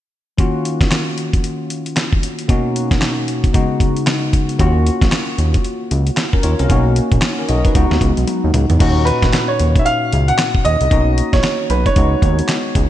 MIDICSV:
0, 0, Header, 1, 5, 480
1, 0, Start_track
1, 0, Key_signature, -6, "minor"
1, 0, Tempo, 526316
1, 349, Time_signature, 4, 2, 24, 8
1, 11761, End_track
2, 0, Start_track
2, 0, Title_t, "Grand piano"
2, 0, Program_c, 0, 0
2, 8255, Note_on_c, 0, 71, 83
2, 8647, Note_on_c, 0, 73, 85
2, 8658, Note_off_c, 0, 71, 0
2, 8931, Note_on_c, 0, 76, 68
2, 8944, Note_off_c, 0, 73, 0
2, 8986, Note_off_c, 0, 76, 0
2, 8988, Note_on_c, 0, 77, 107
2, 9376, Note_on_c, 0, 78, 93
2, 9384, Note_off_c, 0, 77, 0
2, 9710, Note_on_c, 0, 75, 114
2, 9720, Note_off_c, 0, 78, 0
2, 10297, Note_off_c, 0, 75, 0
2, 10333, Note_on_c, 0, 73, 89
2, 10672, Note_on_c, 0, 71, 78
2, 10679, Note_off_c, 0, 73, 0
2, 10818, Note_on_c, 0, 73, 95
2, 10819, Note_off_c, 0, 71, 0
2, 11595, Note_off_c, 0, 73, 0
2, 11761, End_track
3, 0, Start_track
3, 0, Title_t, "Tine electric piano"
3, 0, Program_c, 1, 4
3, 342, Note_on_c, 1, 51, 71
3, 350, Note_on_c, 1, 58, 65
3, 354, Note_on_c, 1, 61, 67
3, 361, Note_on_c, 1, 65, 70
3, 366, Note_on_c, 1, 66, 79
3, 529, Control_c, 1, 64, 127
3, 2229, Note_off_c, 1, 51, 0
3, 2233, Note_off_c, 1, 58, 0
3, 2235, Note_off_c, 1, 61, 0
3, 2239, Note_off_c, 1, 65, 0
3, 2241, Note_off_c, 1, 66, 0
3, 2261, Note_on_c, 1, 47, 72
3, 2265, Note_on_c, 1, 58, 70
3, 2271, Note_on_c, 1, 61, 67
3, 2277, Note_on_c, 1, 63, 69
3, 2280, Control_c, 1, 64, 0
3, 2281, Note_on_c, 1, 66, 80
3, 2437, Control_c, 1, 64, 127
3, 3206, Note_off_c, 1, 47, 0
3, 3208, Note_off_c, 1, 58, 0
3, 3211, Note_off_c, 1, 61, 0
3, 3214, Note_off_c, 1, 63, 0
3, 3216, Note_off_c, 1, 66, 0
3, 3219, Note_on_c, 1, 49, 71
3, 3222, Note_on_c, 1, 56, 67
3, 3228, Note_on_c, 1, 59, 64
3, 3232, Note_on_c, 1, 63, 62
3, 3239, Control_c, 1, 64, 0
3, 3239, Note_on_c, 1, 66, 73
3, 3422, Control_c, 1, 64, 127
3, 4165, Note_off_c, 1, 49, 0
3, 4166, Note_off_c, 1, 56, 0
3, 4169, Note_off_c, 1, 59, 0
3, 4171, Note_off_c, 1, 63, 0
3, 4175, Note_off_c, 1, 66, 0
3, 4180, Note_on_c, 1, 58, 78
3, 4187, Note_on_c, 1, 61, 68
3, 4197, Note_on_c, 1, 65, 67
3, 4199, Control_c, 1, 64, 0
3, 4202, Note_on_c, 1, 66, 90
3, 4348, Control_c, 1, 64, 127
3, 5599, Note_off_c, 1, 61, 0
3, 5604, Note_off_c, 1, 65, 0
3, 5607, Note_off_c, 1, 66, 0
3, 5775, Note_on_c, 1, 70, 63
3, 5778, Note_on_c, 1, 61, 52
3, 5865, Note_off_c, 1, 70, 0
3, 5867, Note_off_c, 1, 61, 0
3, 5869, Note_on_c, 1, 73, 65
3, 5876, Note_on_c, 1, 65, 59
3, 6006, Note_off_c, 1, 73, 0
3, 6010, Note_off_c, 1, 65, 0
3, 6014, Note_on_c, 1, 70, 63
3, 6018, Note_on_c, 1, 61, 59
3, 6068, Note_off_c, 1, 58, 0
3, 6099, Note_off_c, 1, 61, 0
3, 6100, Note_on_c, 1, 58, 77
3, 6110, Note_on_c, 1, 61, 72
3, 6115, Note_on_c, 1, 63, 65
3, 6121, Control_c, 1, 64, 0
3, 6124, Note_on_c, 1, 66, 79
3, 6242, Note_off_c, 1, 70, 0
3, 6301, Control_c, 1, 64, 127
3, 6345, Note_off_c, 1, 61, 0
3, 6347, Note_off_c, 1, 63, 0
3, 6352, Note_off_c, 1, 66, 0
3, 6738, Note_on_c, 1, 70, 58
3, 6747, Note_on_c, 1, 61, 50
3, 6827, Note_off_c, 1, 70, 0
3, 6830, Note_on_c, 1, 75, 64
3, 6832, Note_off_c, 1, 61, 0
3, 6839, Note_on_c, 1, 66, 55
3, 6967, Note_off_c, 1, 75, 0
3, 6971, Note_off_c, 1, 66, 0
3, 6979, Note_on_c, 1, 71, 55
3, 6986, Note_on_c, 1, 63, 52
3, 7045, Note_off_c, 1, 58, 0
3, 7060, Note_on_c, 1, 56, 72
3, 7066, Note_off_c, 1, 63, 0
3, 7066, Note_on_c, 1, 59, 68
3, 7077, Note_on_c, 1, 63, 61
3, 7082, Control_c, 1, 64, 0
3, 7082, Note_on_c, 1, 66, 76
3, 7204, Note_off_c, 1, 71, 0
3, 7220, Control_c, 1, 64, 127
3, 8005, Note_off_c, 1, 56, 0
3, 8009, Note_off_c, 1, 59, 0
3, 8014, Note_off_c, 1, 63, 0
3, 8016, Note_off_c, 1, 66, 0
3, 8018, Note_on_c, 1, 46, 76
3, 8021, Note_on_c, 1, 61, 74
3, 8029, Note_on_c, 1, 63, 71
3, 8037, Note_on_c, 1, 66, 95
3, 8041, Control_c, 1, 64, 0
3, 8215, Control_c, 1, 64, 127
3, 9907, Note_off_c, 1, 46, 0
3, 9909, Note_off_c, 1, 61, 0
3, 9913, Note_off_c, 1, 63, 0
3, 9917, Note_off_c, 1, 66, 0
3, 9940, Note_on_c, 1, 58, 65
3, 9944, Note_on_c, 1, 61, 59
3, 9954, Note_on_c, 1, 63, 64
3, 9960, Note_on_c, 1, 66, 71
3, 9961, Control_c, 1, 64, 0
3, 10098, Control_c, 1, 64, 127
3, 10886, Note_off_c, 1, 58, 0
3, 10887, Note_off_c, 1, 61, 0
3, 10892, Note_off_c, 1, 63, 0
3, 10896, Note_off_c, 1, 66, 0
3, 10903, Note_on_c, 1, 56, 65
3, 10909, Note_on_c, 1, 59, 53
3, 10915, Note_on_c, 1, 63, 58
3, 10923, Control_c, 1, 64, 0
3, 10923, Note_on_c, 1, 66, 75
3, 11089, Control_c, 1, 64, 127
3, 11761, Note_off_c, 1, 56, 0
3, 11761, Note_off_c, 1, 59, 0
3, 11761, Note_off_c, 1, 63, 0
3, 11761, Note_off_c, 1, 66, 0
3, 11761, End_track
4, 0, Start_track
4, 0, Title_t, "Analog synth bass"
4, 0, Program_c, 2, 38
4, 4192, Note_on_c, 2, 39, 111
4, 4473, Note_off_c, 2, 39, 0
4, 4576, Note_on_c, 2, 34, 91
4, 4645, Note_off_c, 2, 34, 0
4, 4909, Note_on_c, 2, 39, 89
4, 5085, Note_off_c, 2, 39, 0
4, 5393, Note_on_c, 2, 37, 94
4, 5567, Note_off_c, 2, 37, 0
4, 5871, Note_on_c, 2, 39, 85
4, 5977, Note_off_c, 2, 39, 0
4, 6018, Note_on_c, 2, 36, 81
4, 6087, Note_off_c, 2, 36, 0
4, 6109, Note_on_c, 2, 35, 102
4, 6391, Note_off_c, 2, 35, 0
4, 6492, Note_on_c, 2, 34, 81
4, 6563, Note_off_c, 2, 34, 0
4, 6832, Note_on_c, 2, 35, 94
4, 7007, Note_off_c, 2, 35, 0
4, 7071, Note_on_c, 2, 37, 113
4, 7176, Note_off_c, 2, 37, 0
4, 7213, Note_on_c, 2, 39, 81
4, 7283, Note_off_c, 2, 39, 0
4, 7310, Note_on_c, 2, 37, 106
4, 7416, Note_off_c, 2, 37, 0
4, 7457, Note_on_c, 2, 35, 81
4, 7526, Note_off_c, 2, 35, 0
4, 7699, Note_on_c, 2, 39, 92
4, 7767, Note_off_c, 2, 39, 0
4, 7792, Note_on_c, 2, 37, 96
4, 7897, Note_off_c, 2, 37, 0
4, 7936, Note_on_c, 2, 40, 78
4, 8005, Note_off_c, 2, 40, 0
4, 8031, Note_on_c, 2, 39, 106
4, 8312, Note_off_c, 2, 39, 0
4, 8416, Note_on_c, 2, 34, 88
4, 8485, Note_off_c, 2, 34, 0
4, 8757, Note_on_c, 2, 39, 82
4, 8930, Note_off_c, 2, 39, 0
4, 9238, Note_on_c, 2, 37, 90
4, 9411, Note_off_c, 2, 37, 0
4, 9718, Note_on_c, 2, 39, 85
4, 9820, Note_off_c, 2, 39, 0
4, 9860, Note_on_c, 2, 36, 82
4, 9928, Note_off_c, 2, 36, 0
4, 9952, Note_on_c, 2, 35, 102
4, 10233, Note_off_c, 2, 35, 0
4, 10336, Note_on_c, 2, 34, 81
4, 10406, Note_off_c, 2, 34, 0
4, 10670, Note_on_c, 2, 35, 100
4, 10846, Note_off_c, 2, 35, 0
4, 10914, Note_on_c, 2, 37, 113
4, 11088, Note_off_c, 2, 37, 0
4, 11149, Note_on_c, 2, 39, 96
4, 11325, Note_off_c, 2, 39, 0
4, 11634, Note_on_c, 2, 37, 88
4, 11738, Note_off_c, 2, 37, 0
4, 11761, End_track
5, 0, Start_track
5, 0, Title_t, "Drums"
5, 351, Note_on_c, 9, 36, 92
5, 352, Note_on_c, 9, 42, 69
5, 442, Note_off_c, 9, 36, 0
5, 443, Note_off_c, 9, 42, 0
5, 596, Note_on_c, 9, 42, 72
5, 687, Note_off_c, 9, 42, 0
5, 736, Note_on_c, 9, 36, 94
5, 739, Note_on_c, 9, 38, 75
5, 742, Note_on_c, 9, 42, 52
5, 827, Note_off_c, 9, 36, 0
5, 830, Note_off_c, 9, 38, 0
5, 833, Note_off_c, 9, 42, 0
5, 834, Note_on_c, 9, 42, 62
5, 835, Note_on_c, 9, 38, 100
5, 836, Note_on_c, 9, 39, 86
5, 925, Note_off_c, 9, 42, 0
5, 926, Note_off_c, 9, 38, 0
5, 928, Note_off_c, 9, 39, 0
5, 1073, Note_on_c, 9, 42, 63
5, 1164, Note_off_c, 9, 42, 0
5, 1217, Note_on_c, 9, 36, 86
5, 1219, Note_on_c, 9, 42, 57
5, 1308, Note_off_c, 9, 36, 0
5, 1310, Note_off_c, 9, 42, 0
5, 1312, Note_on_c, 9, 42, 77
5, 1404, Note_off_c, 9, 42, 0
5, 1553, Note_on_c, 9, 42, 75
5, 1644, Note_off_c, 9, 42, 0
5, 1697, Note_on_c, 9, 42, 57
5, 1788, Note_off_c, 9, 42, 0
5, 1793, Note_on_c, 9, 42, 78
5, 1794, Note_on_c, 9, 38, 103
5, 1796, Note_on_c, 9, 39, 81
5, 1884, Note_off_c, 9, 42, 0
5, 1885, Note_off_c, 9, 38, 0
5, 1887, Note_off_c, 9, 39, 0
5, 1939, Note_on_c, 9, 36, 90
5, 2030, Note_off_c, 9, 36, 0
5, 2035, Note_on_c, 9, 42, 86
5, 2127, Note_off_c, 9, 42, 0
5, 2176, Note_on_c, 9, 42, 53
5, 2267, Note_off_c, 9, 42, 0
5, 2271, Note_on_c, 9, 36, 96
5, 2273, Note_on_c, 9, 42, 70
5, 2362, Note_off_c, 9, 36, 0
5, 2364, Note_off_c, 9, 42, 0
5, 2517, Note_on_c, 9, 42, 82
5, 2608, Note_off_c, 9, 42, 0
5, 2655, Note_on_c, 9, 36, 88
5, 2657, Note_on_c, 9, 38, 77
5, 2659, Note_on_c, 9, 42, 54
5, 2746, Note_off_c, 9, 36, 0
5, 2748, Note_off_c, 9, 38, 0
5, 2750, Note_off_c, 9, 42, 0
5, 2750, Note_on_c, 9, 42, 58
5, 2752, Note_on_c, 9, 38, 107
5, 2753, Note_on_c, 9, 39, 86
5, 2842, Note_off_c, 9, 42, 0
5, 2843, Note_off_c, 9, 38, 0
5, 2844, Note_off_c, 9, 39, 0
5, 2991, Note_on_c, 9, 42, 68
5, 3082, Note_off_c, 9, 42, 0
5, 3136, Note_on_c, 9, 36, 87
5, 3138, Note_on_c, 9, 42, 58
5, 3227, Note_off_c, 9, 36, 0
5, 3229, Note_off_c, 9, 42, 0
5, 3231, Note_on_c, 9, 42, 73
5, 3232, Note_on_c, 9, 36, 92
5, 3323, Note_off_c, 9, 36, 0
5, 3323, Note_off_c, 9, 42, 0
5, 3467, Note_on_c, 9, 36, 88
5, 3472, Note_on_c, 9, 42, 74
5, 3559, Note_off_c, 9, 36, 0
5, 3563, Note_off_c, 9, 42, 0
5, 3616, Note_on_c, 9, 42, 54
5, 3707, Note_off_c, 9, 42, 0
5, 3711, Note_on_c, 9, 42, 71
5, 3712, Note_on_c, 9, 38, 103
5, 3714, Note_on_c, 9, 39, 86
5, 3802, Note_off_c, 9, 42, 0
5, 3803, Note_off_c, 9, 38, 0
5, 3805, Note_off_c, 9, 39, 0
5, 3951, Note_on_c, 9, 36, 81
5, 3953, Note_on_c, 9, 42, 84
5, 4042, Note_off_c, 9, 36, 0
5, 4044, Note_off_c, 9, 42, 0
5, 4096, Note_on_c, 9, 42, 49
5, 4187, Note_off_c, 9, 42, 0
5, 4190, Note_on_c, 9, 36, 102
5, 4192, Note_on_c, 9, 42, 68
5, 4281, Note_off_c, 9, 36, 0
5, 4283, Note_off_c, 9, 42, 0
5, 4437, Note_on_c, 9, 42, 78
5, 4528, Note_off_c, 9, 42, 0
5, 4574, Note_on_c, 9, 36, 86
5, 4578, Note_on_c, 9, 38, 73
5, 4580, Note_on_c, 9, 42, 52
5, 4665, Note_off_c, 9, 36, 0
5, 4669, Note_off_c, 9, 38, 0
5, 4670, Note_off_c, 9, 42, 0
5, 4670, Note_on_c, 9, 42, 62
5, 4671, Note_on_c, 9, 38, 108
5, 4672, Note_on_c, 9, 39, 89
5, 4761, Note_off_c, 9, 42, 0
5, 4762, Note_off_c, 9, 38, 0
5, 4764, Note_off_c, 9, 39, 0
5, 4911, Note_on_c, 9, 42, 65
5, 5002, Note_off_c, 9, 42, 0
5, 5054, Note_on_c, 9, 42, 57
5, 5055, Note_on_c, 9, 36, 85
5, 5146, Note_off_c, 9, 36, 0
5, 5146, Note_off_c, 9, 42, 0
5, 5148, Note_on_c, 9, 42, 73
5, 5239, Note_off_c, 9, 42, 0
5, 5391, Note_on_c, 9, 42, 80
5, 5482, Note_off_c, 9, 42, 0
5, 5532, Note_on_c, 9, 42, 57
5, 5623, Note_off_c, 9, 42, 0
5, 5627, Note_on_c, 9, 42, 76
5, 5628, Note_on_c, 9, 38, 101
5, 5630, Note_on_c, 9, 39, 81
5, 5718, Note_off_c, 9, 42, 0
5, 5719, Note_off_c, 9, 38, 0
5, 5721, Note_off_c, 9, 39, 0
5, 5775, Note_on_c, 9, 36, 90
5, 5866, Note_off_c, 9, 36, 0
5, 5866, Note_on_c, 9, 42, 85
5, 5957, Note_off_c, 9, 42, 0
5, 6013, Note_on_c, 9, 42, 55
5, 6104, Note_off_c, 9, 42, 0
5, 6107, Note_on_c, 9, 42, 72
5, 6108, Note_on_c, 9, 36, 105
5, 6199, Note_off_c, 9, 36, 0
5, 6199, Note_off_c, 9, 42, 0
5, 6349, Note_on_c, 9, 42, 77
5, 6440, Note_off_c, 9, 42, 0
5, 6490, Note_on_c, 9, 36, 85
5, 6490, Note_on_c, 9, 42, 57
5, 6581, Note_off_c, 9, 36, 0
5, 6581, Note_off_c, 9, 42, 0
5, 6582, Note_on_c, 9, 42, 60
5, 6583, Note_on_c, 9, 38, 112
5, 6585, Note_on_c, 9, 39, 86
5, 6673, Note_off_c, 9, 42, 0
5, 6674, Note_off_c, 9, 38, 0
5, 6676, Note_off_c, 9, 39, 0
5, 6827, Note_on_c, 9, 42, 66
5, 6918, Note_off_c, 9, 42, 0
5, 6974, Note_on_c, 9, 36, 87
5, 6975, Note_on_c, 9, 42, 58
5, 7065, Note_off_c, 9, 36, 0
5, 7066, Note_off_c, 9, 42, 0
5, 7068, Note_on_c, 9, 42, 79
5, 7069, Note_on_c, 9, 36, 94
5, 7160, Note_off_c, 9, 36, 0
5, 7160, Note_off_c, 9, 42, 0
5, 7216, Note_on_c, 9, 38, 64
5, 7306, Note_on_c, 9, 36, 86
5, 7308, Note_off_c, 9, 38, 0
5, 7309, Note_on_c, 9, 42, 74
5, 7397, Note_off_c, 9, 36, 0
5, 7401, Note_off_c, 9, 42, 0
5, 7453, Note_on_c, 9, 42, 52
5, 7544, Note_off_c, 9, 42, 0
5, 7547, Note_on_c, 9, 42, 78
5, 7547, Note_on_c, 9, 48, 49
5, 7638, Note_off_c, 9, 42, 0
5, 7638, Note_off_c, 9, 48, 0
5, 7787, Note_on_c, 9, 45, 86
5, 7788, Note_on_c, 9, 42, 85
5, 7878, Note_off_c, 9, 45, 0
5, 7879, Note_off_c, 9, 42, 0
5, 7931, Note_on_c, 9, 42, 52
5, 7932, Note_on_c, 9, 43, 79
5, 8022, Note_off_c, 9, 42, 0
5, 8023, Note_off_c, 9, 43, 0
5, 8029, Note_on_c, 9, 36, 98
5, 8029, Note_on_c, 9, 42, 76
5, 8029, Note_on_c, 9, 49, 79
5, 8120, Note_off_c, 9, 36, 0
5, 8120, Note_off_c, 9, 42, 0
5, 8120, Note_off_c, 9, 49, 0
5, 8269, Note_on_c, 9, 42, 79
5, 8360, Note_off_c, 9, 42, 0
5, 8413, Note_on_c, 9, 36, 96
5, 8413, Note_on_c, 9, 38, 73
5, 8416, Note_on_c, 9, 42, 51
5, 8504, Note_off_c, 9, 36, 0
5, 8504, Note_off_c, 9, 38, 0
5, 8507, Note_off_c, 9, 42, 0
5, 8512, Note_on_c, 9, 42, 59
5, 8513, Note_on_c, 9, 38, 106
5, 8514, Note_on_c, 9, 39, 83
5, 8603, Note_off_c, 9, 42, 0
5, 8604, Note_off_c, 9, 38, 0
5, 8606, Note_off_c, 9, 39, 0
5, 8750, Note_on_c, 9, 42, 68
5, 8842, Note_off_c, 9, 42, 0
5, 8897, Note_on_c, 9, 36, 89
5, 8899, Note_on_c, 9, 42, 56
5, 8988, Note_off_c, 9, 36, 0
5, 8990, Note_off_c, 9, 42, 0
5, 8991, Note_on_c, 9, 42, 73
5, 9082, Note_off_c, 9, 42, 0
5, 9234, Note_on_c, 9, 42, 76
5, 9325, Note_off_c, 9, 42, 0
5, 9378, Note_on_c, 9, 42, 55
5, 9469, Note_off_c, 9, 42, 0
5, 9471, Note_on_c, 9, 42, 85
5, 9472, Note_on_c, 9, 38, 109
5, 9474, Note_on_c, 9, 39, 89
5, 9562, Note_off_c, 9, 42, 0
5, 9563, Note_off_c, 9, 38, 0
5, 9565, Note_off_c, 9, 39, 0
5, 9618, Note_on_c, 9, 36, 91
5, 9709, Note_off_c, 9, 36, 0
5, 9714, Note_on_c, 9, 42, 83
5, 9805, Note_off_c, 9, 42, 0
5, 9856, Note_on_c, 9, 42, 56
5, 9947, Note_off_c, 9, 42, 0
5, 9951, Note_on_c, 9, 36, 101
5, 9953, Note_on_c, 9, 42, 67
5, 10042, Note_off_c, 9, 36, 0
5, 10044, Note_off_c, 9, 42, 0
5, 10194, Note_on_c, 9, 42, 83
5, 10285, Note_off_c, 9, 42, 0
5, 10333, Note_on_c, 9, 36, 95
5, 10334, Note_on_c, 9, 38, 76
5, 10336, Note_on_c, 9, 42, 58
5, 10425, Note_off_c, 9, 36, 0
5, 10425, Note_off_c, 9, 38, 0
5, 10428, Note_off_c, 9, 42, 0
5, 10429, Note_on_c, 9, 42, 57
5, 10430, Note_on_c, 9, 38, 109
5, 10432, Note_on_c, 9, 39, 89
5, 10520, Note_off_c, 9, 42, 0
5, 10522, Note_off_c, 9, 38, 0
5, 10523, Note_off_c, 9, 39, 0
5, 10669, Note_on_c, 9, 42, 68
5, 10760, Note_off_c, 9, 42, 0
5, 10815, Note_on_c, 9, 36, 91
5, 10815, Note_on_c, 9, 42, 59
5, 10906, Note_off_c, 9, 36, 0
5, 10906, Note_off_c, 9, 42, 0
5, 10908, Note_on_c, 9, 42, 77
5, 10910, Note_on_c, 9, 36, 95
5, 10999, Note_off_c, 9, 42, 0
5, 11001, Note_off_c, 9, 36, 0
5, 11147, Note_on_c, 9, 36, 83
5, 11150, Note_on_c, 9, 42, 72
5, 11238, Note_off_c, 9, 36, 0
5, 11241, Note_off_c, 9, 42, 0
5, 11297, Note_on_c, 9, 42, 61
5, 11387, Note_off_c, 9, 42, 0
5, 11387, Note_on_c, 9, 42, 81
5, 11388, Note_on_c, 9, 38, 106
5, 11389, Note_on_c, 9, 39, 83
5, 11478, Note_off_c, 9, 42, 0
5, 11479, Note_off_c, 9, 38, 0
5, 11480, Note_off_c, 9, 39, 0
5, 11630, Note_on_c, 9, 36, 94
5, 11631, Note_on_c, 9, 42, 84
5, 11721, Note_off_c, 9, 36, 0
5, 11722, Note_off_c, 9, 42, 0
5, 11761, End_track
0, 0, End_of_file